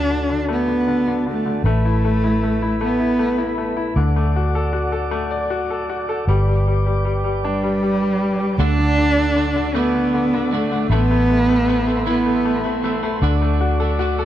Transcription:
Already playing: D2 D3 D4 F#4 A4 D5 A5
0.10 D3
0.29 D3
0.48 A3 B3
0.68 D3
0.87 D3
1.08 D3
1.26 D3
1.31 A3
1.46 D3
1.64 A1 A3 B4 E5 B5
1.68 A3
1.85 E4
2.05 A3
2.24 E4
2.43 A3
2.62 E4
2.81 A3 B3
3.00 E4
3.19 A3
3.38 E4
3.58 A3
3.77 E4
3.96 D2 D3 A4 D5 F#5 D6
4.16 A3
4.36 F#4
4.55 A4
4.73 F#4
4.92 A4
5.11 A3
5.31 D5
5.50 F#4
5.70 A4
5.90 F#4
6.09 A4
6.27 G1 G3 B4 D5 G5 D6
6.48 G3
6.67 G3
6.86 G3
7.05 G3
7.24 G3
7.45 G3 D4
7.64 G3
7.82 G3
8.01 G3
8.21 G3
8.40 G3
8.58 D2 D3 A3 D4 F#4 A4 F#5
8.79 D3
8.98 D3
9.17 D3 A3 D4 F#4
9.36 D3 A3 D4 F#4
9.55 D3 A3 D4 F#4
9.74 D3 A3 B3 D4 F#4
9.94 D3
10.14 D3
10.33 D3 A3 D4 F#4
10.51 D3 A3 D4 F#4
10.71 D3 A3 D4 F#4
10.90 A1 A2 E3 A3 B3 E4 E5 B5 C6
11.11 A3
11.30 A3
11.48 A3 B3 C4 E4
11.68 E3 A3 B3 C4 E4
11.87 A3 B3 C4 E4
12.06 A2 E3 B3 E4
12.26 A3
12.45 A3
12.64 A3 B3 C4 E4
12.83 E3 A3 B3 C4 E4
13.03 A3 B3 C4 E4
13.22 D2 D3 A3 D4 F#4 D5 F#5 D6
13.42 A3
13.61 F#4
13.80 A3 D4 F#4 A4
13.99 D3 A3 D4 F#4
14.18 A3 D4 F#4 A4

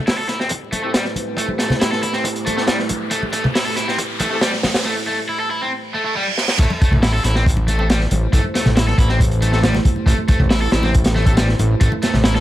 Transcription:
Already playing: A3 E4 G4 B4 C5, riser
0.07 E4, snare, open hi-hat
0.18 A4
0.29 E4, snare, closed hi-hat
0.40 C4, snare
0.49 kick, closed hi-hat
0.72 A3, closed hi-hat, high conga
0.83 A3 C4 E4 G4 A4
0.94 G3, snare, closed hi-hat
1.05 snare
1.16 closed hi-hat, high conga
1.37 A3, kick, closed hi-hat
1.48 high conga
1.59 A3, snare, closed hi-hat
1.70 snare, low conga
1.81 E4, snare, closed hi-hat
1.92 A4, snare
2.03 E4, kick, closed hi-hat
2.13 C4, snare
2.24 kick, closed hi-hat
2.36 closed hi-hat
2.46 A3, closed hi-hat, high conga
2.57 A3 C4 E4 G4 A4, snare
2.67 G3, snare, closed hi-hat
2.79 snare
2.89 kick, closed hi-hat, high conga
3.11 A3, kick, closed hi-hat
3.23 high conga
3.33 A3, kick, closed hi-hat
3.44 kick, low conga
3.55 E4, snare, open hi-hat
3.66 A4
3.77 E4, snare, closed hi-hat
3.88 C4, snare
3.99 kick, closed hi-hat
4.20 A3, kick, closed hi-hat, high conga
4.31 A3 C4 E4 G4 A4
4.41 G3, snare, closed hi-hat
4.53 snare
4.63 snare, open hi-hat, high conga
4.74 snare, open hi-hat
4.86 A3
5.07 A3
5.29 E4
5.40 A4
5.51 E4
5.62 C4
5.72 reverse cymbal
5.94 A3
6.05 A3
6.16 G3
6.38 snare
6.48 snare
6.59 A1 A3 E4 G4 B4 C5, kick, closed hi-hat, crash
6.70 muted conga, high conga
6.82 A3, kick, closed hi-hat
6.91 A1, kick, low conga
7.03 E4, snare, open hi-hat, muted conga
7.14 A4
7.24 A1 E4, snare, closed hi-hat, muted conga
7.35 C4, snare
7.46 kick, closed hi-hat
7.57 muted conga
7.68 A3, closed hi-hat, high conga
7.79 A3 C4 E4 G4 A4, muted conga
7.90 G3, snare, closed hi-hat
8.00 snare
8.11 A1, closed hi-hat, muted conga, high conga
8.33 A1 A3, kick, closed hi-hat, muted conga
8.44 high conga
8.55 A3, snare, closed hi-hat
8.66 A1, snare, muted conga, low conga
8.77 E4, snare, closed hi-hat
8.87 A4, snare, muted conga
8.98 A1 E4, kick, closed hi-hat
9.09 C4, snare
9.20 kick, closed hi-hat, muted conga
9.31 closed hi-hat
9.42 A3, closed hi-hat, muted conga, high conga
9.52 A3 C4 E4 G4 A4, snare
9.63 G3, snare, closed hi-hat
9.74 snare, muted conga
9.85 kick, closed hi-hat, high conga
9.96 muted conga
10.06 A1 A3, kick, closed hi-hat
10.18 high conga
10.28 A3, kick, closed hi-hat, muted conga
10.40 A1, kick, low conga
10.50 E4, snare, open hi-hat, muted conga
10.61 A4
10.72 A1 E4, snare, closed hi-hat
10.83 C4, snare, muted conga
10.94 kick, closed hi-hat
11.04 snare, closed hi-hat, muted conga
11.16 A3, snare, high conga
11.26 A3 C4 E4 G4 A4, kick, closed hi-hat
11.37 G3, snare, closed hi-hat, muted conga
11.49 snare
11.59 A1, closed hi-hat, muted conga, high conga
11.81 A1 A3, kick, closed hi-hat
11.92 muted conga, high conga
12.02 A3, snare, closed hi-hat
12.14 A1, snare, muted conga, low conga
12.24 E4, snare, closed hi-hat
12.35 A4, snare

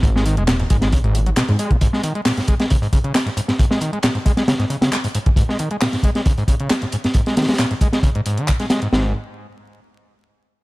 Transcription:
0.03 G#1 G#2, kick, closed hi-hat
0.16 G#3, snare
0.26 D#3, closed hi-hat
0.37 D#1 G#3, closed hi-hat
0.48 A#2, snare, clap, closed hi-hat
0.60 G#2, closed hi-hat
0.70 G#1 G#3, kick, closed hi-hat
0.81 G#3, snare, closed hi-hat
0.92 C#3, kick, closed hi-hat
1.04 G#1 G#2, closed hi-hat
1.15 A#2, closed hi-hat
1.26 F#3, closed hi-hat
1.36 B2, snare, clap, closed hi-hat
1.49 F#2 G#2, closed hi-hat
1.59 G#3, closed hi-hat
1.71 G#2, kick, closed hi-hat
1.81 G#2, kick, closed hi-hat
1.93 G#3, snare
2.03 D#3, closed hi-hat
2.15 G#3, closed hi-hat
2.25 A#2, snare, clap, closed hi-hat, open hi-hat
2.37 G#2, snare, closed hi-hat
2.48 G#3, kick, closed hi-hat
2.60 G#3, snare, closed hi-hat
2.70 C#3, kick, closed hi-hat
2.82 G#2, closed hi-hat
2.93 C#3, kick, closed hi-hat
3.04 C#3, closed hi-hat
3.14 G#3, snare, clap, closed hi-hat
3.26 G#2, snare, closed hi-hat
3.37 G#2, closed hi-hat
3.48 G#2, snare, closed hi-hat
3.59 G#2, kick, closed hi-hat
3.71 G#3, snare
3.81 D#3, closed hi-hat
3.93 G#3, closed hi-hat
4.03 A#2, snare, clap, closed hi-hat
4.15 G#2, closed hi-hat
4.25 G#3, kick, closed hi-hat
4.37 G#3, snare, closed hi-hat
4.48 C#3, snare, closed hi-hat
4.59 G#2, snare, closed hi-hat
4.70 C#3, closed hi-hat
4.81 C#3, snare, closed hi-hat
4.92 G#3, snare, clap, closed hi-hat
5.04 G#2, closed hi-hat
5.15 G#2, closed hi-hat
5.26 G#2, kick, closed hi-hat
5.36 G#2, kick, closed hi-hat
5.49 G#3, snare
5.59 D#3, closed hi-hat
5.71 G#3, closed hi-hat
5.81 A#2, snare, clap, closed hi-hat, open hi-hat
5.93 G#2, snare, closed hi-hat
6.03 G#3, kick, closed hi-hat
6.15 G#3, snare, closed hi-hat
6.26 C#3, kick, closed hi-hat
6.37 G#2, closed hi-hat
6.48 C#3, kick, closed hi-hat
6.60 C#3, closed hi-hat
6.70 G#3, snare, clap, closed hi-hat
6.81 G#2, snare, closed hi-hat
6.92 G#2, closed hi-hat
7.04 G#2, snare, closed hi-hat
7.14 G#2, kick, closed hi-hat
7.26 G#3, snare, closed hi-hat
7.37 D#3, snare, closed hi-hat, open hi-hat
7.42 snare, open hi-hat
7.47 G#3, snare, closed hi-hat, open hi-hat
7.54 snare, open hi-hat
7.59 A#2, snare, clap, closed hi-hat
7.71 G#2, closed hi-hat
7.81 G#3, kick, closed hi-hat
7.93 G#3, snare, closed hi-hat
8.03 C#3, kick, closed hi-hat
8.15 G#2, closed hi-hat
8.26 G#2, closed hi-hat
8.38 D#3, closed hi-hat
8.48 C#3, kick, clap, closed hi-hat
8.60 G#3, snare, closed hi-hat
8.70 G#3, snare, closed hi-hat
8.82 G#2, closed hi-hat
8.92 G#1 G#2, snare

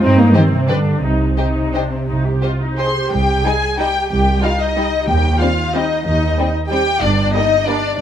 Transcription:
0.02 G2 C4 D#4
0.18 A#3
0.34 D#3 C4 G4 C5 D#5
0.52 C3
0.68 G2 D3 D4 G4 B4 D5
1.03 C2 C3 D#4
1.38 D#4 G4 C5 D#5
1.74 D4 G4 C5 D#5
1.91 C4
2.08 C2 D#4
2.25 G4
2.42 F4 G4 C5 D#5
2.61 D#4
2.78 G4 G#4 C5 D#5 C6
2.95 G4
3.12 C2 G4 G5
3.45 G3 D#4 G#4 G#5
3.78 G3 D#4 G4 G5
4.10 C2 G4 G5
4.42 G3 D#4 F4 F5
4.59 D#4 D#5
4.77 G3 D#4
5.07 D#2 D#3 G4 G5
5.39 G3 C4 F4 F5
5.73 G3 C4 D#4 D#5
6.05 D#2 D#4 D#5
6.38 G3 C4
6.70 G3 C4 G4 G5
7.01 G1 G2 D4 D5
7.34 G3 A#3 D#4 D#5
7.67 G3 A#3 D4 D5
7.98 D4

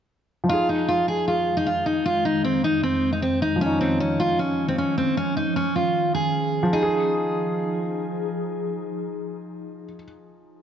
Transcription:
0.44 F3
0.49 F2 D#3 G#3 D#4 F4
0.54 G#4
0.69 D#4
0.88 F4
1.08 G#4
1.28 F4
1.57 D#4
1.66 F4
1.86 D#4
2.06 F4
2.25 D#4
2.44 C4
2.64 D#4
2.83 C4
3.13 D#4
3.22 C4
3.42 D#4
3.56 F3
3.61 F3 C#4
3.66 D#4
3.81 C4
4.00 C#4
4.20 F4
4.39 C#4
4.68 C4
4.78 C#4
4.98 C4
5.17 C#4
5.37 D#4
5.56 C#4
5.76 F4
6.15 G#4
6.63 F3
6.73 F3 D#4 G#4
6.83 G#4

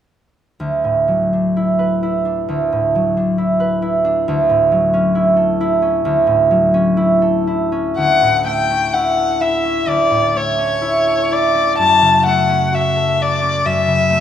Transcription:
0.60 D2
0.84 A2
1.08 F#3
1.33 D4
1.56 E4
1.79 B4
2.03 E4
2.25 D4
2.48 D2
2.72 A2
2.95 F#3
3.17 D4
3.38 E4
3.60 B4
3.82 E4
4.05 D4
4.28 D2
4.50 A2
4.72 F#3
4.94 C#4
5.15 E4
5.36 A4
5.61 E4
5.82 C#4
6.05 D2
6.27 A2
6.51 F#3
6.74 C#4
6.97 E4
7.22 A4
7.47 E4
7.72 C#4
7.98 D2 F#5
8.22 A2
8.45 A3 G5
8.70 C#4
8.93 E4 F#5
9.17 A4
9.40 E4 E5
9.64 C#4
9.86 D2 D5
10.10 A2
10.35 A3 C#5
10.58 C#4
10.82 E4
11.07 A4
11.31 E4 D5
11.55 C#4
11.78 F#2 A5
12.01 C#3
12.25 A3 F#5
12.49 C#4
12.73 F#4 E5
12.96 A4
13.20 F#4 D5
13.42 C#4
13.65 F#2 E5
13.87 C#3
14.10 A3

